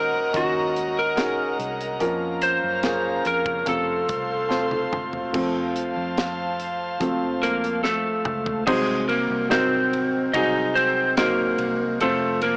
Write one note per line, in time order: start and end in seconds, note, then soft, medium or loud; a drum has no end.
0.00 0.30 D#2 medium
0.00 2.03 A#2 medium
0.00 0.33 C#4 medium
0.00 0.34 D#4 medium
0.00 0.34 F#4 medium
0.00 0.34 A#4 medium
0.00 0.37 A#4 medium
0.00 3.63 A#4 medium
0.00 0.30 C5 medium
0.00 1.98 D#5 medium
0.00 1.97 F#5 medium
0.00 1.98 A#5 medium
0.33 1.55 D#2 medium
0.33 1.13 C#4 medium
0.33 1.13 D#4 medium
0.33 1.13 F#4 medium
0.33 1.00 F#4 medium
0.33 1.13 A#4 medium
0.33 kick medium
0.33 closed hi-hat medium
0.76 closed hi-hat medium
0.99 1.56 A#4 medium
1.16 1.96 C#4 medium
1.16 1.96 D#4 medium
1.16 1.96 F#4 medium
1.16 1.97 G#4 medium
1.16 snare medium
1.16 closed hi-hat medium
1.59 1.98 C2 medium
1.59 closed hi-hat medium
1.81 closed hi-hat soft
1.99 2.59 F2 medium
1.99 3.22 F3 medium
1.99 2.79 A#3 medium
1.99 3.65 C#4 medium
1.99 2.80 C#4 medium
1.99 2.80 F4 medium
1.99 2.80 A#4 medium
1.99 3.65 F5 medium
1.99 3.65 A#5 medium
1.99 closed hi-hat medium
2.42 3.27 C5 medium
2.42 closed hi-hat medium
2.64 3.22 F#2 medium
2.83 3.63 A#3 medium
2.83 3.63 C#4 medium
2.83 3.63 F4 medium
2.83 3.64 G#4 medium
2.83 snare medium
2.83 closed hi-hat medium
3.25 3.64 F2 medium
3.25 3.68 A#4 medium
3.25 closed hi-hat medium
3.46 kick medium
3.66 4.06 F2 medium
3.66 4.88 C3 medium
3.66 4.46 A3 medium
3.66 4.46 C4 medium
3.66 4.46 F4 medium
3.66 5.32 A4 medium
3.66 4.47 A4 medium
3.66 4.89 A4 medium
3.66 5.32 C5 medium
3.66 5.32 F5 medium
3.66 5.32 C6 medium
3.66 kick medium
3.66 closed hi-hat medium
4.09 5.30 C2 medium
4.09 kick medium
4.09 closed hi-hat medium
4.49 5.29 A3 medium
4.49 5.29 C4 medium
4.49 5.29 F4 medium
4.49 5.30 C5 medium
4.49 snare soft
4.71 high tom soft
4.93 mid tom medium
5.13 floor tom medium
5.33 5.93 F2 medium
5.33 6.55 F3 soft
5.33 6.55 A3 soft
5.33 6.55 C4 soft
5.33 8.64 C5 medium
5.33 8.64 F5 medium
5.33 8.64 A5 medium
5.33 kick medium
5.33 crash medium
5.76 closed hi-hat medium
5.97 6.97 F2 medium
6.17 snare loud
6.17 closed hi-hat medium
6.60 closed hi-hat medium
7.00 8.22 F2 loud
7.00 7.38 F3 soft
7.00 7.39 A3 soft
7.00 7.39 C4 soft
7.00 kick medium
7.00 closed hi-hat medium
7.43 7.82 A#3 medium
7.43 7.83 A#4 medium
7.43 closed hi-hat medium
7.64 closed hi-hat soft
7.84 8.64 A3 medium
7.84 8.66 A4 medium
7.84 snare medium
8.25 8.64 C#2 medium
8.25 mid tom medium
8.46 floor tom medium
8.67 9.26 C2 loud
8.67 9.88 C3 medium
8.67 9.46 F#3 medium
8.67 9.07 G#3 medium
8.67 9.46 C4 medium
8.67 9.46 D#4 medium
8.67 9.47 F#4 medium
8.67 9.08 G#4 medium
8.67 9.47 C5 medium
8.67 kick loud
8.67 crash loud
9.09 9.48 A#3 medium
9.09 9.51 A#4 medium
9.09 ride medium
9.30 10.30 C2 medium
9.49 10.29 F#3 medium
9.49 10.30 C4 medium
9.49 10.31 C4 medium
9.49 10.30 D#4 medium
9.49 10.30 F#4 medium
9.49 10.30 A#4 medium
9.49 10.37 C5 medium
9.49 snare loud
9.49 ride medium
9.93 ride soft
10.33 11.55 C2 loud
10.33 11.13 F#3 medium
10.33 11.13 C4 medium
10.33 11.14 D#4 medium
10.33 10.73 D#4 medium
10.33 11.14 F#4 medium
10.33 11.14 G#4 medium
10.33 10.77 D#5 medium
10.33 kick medium
10.33 ride medium
10.75 11.15 C4 medium
10.75 11.14 C5 loud
10.75 ride medium
11.17 11.97 F#3 medium
11.17 11.98 A#3 medium
11.17 11.97 C4 medium
11.17 11.97 D#4 medium
11.17 11.97 F#4 medium
11.17 12.01 A#4 medium
11.17 11.97 C5 medium
11.17 snare loud
11.17 ride medium
11.58 11.98 C2 medium
11.58 ride medium
12.00 12.57 F1 loud
12.00 12.57 C3 medium
12.00 12.57 F3 medium
12.00 12.40 A3 medium
12.00 12.57 C4 medium
12.00 12.57 F4 medium
12.00 12.40 A4 medium
12.00 12.57 C5 medium
12.00 ride medium
12.42 12.57 A#3 medium
12.42 12.57 A#4 medium
12.42 ride medium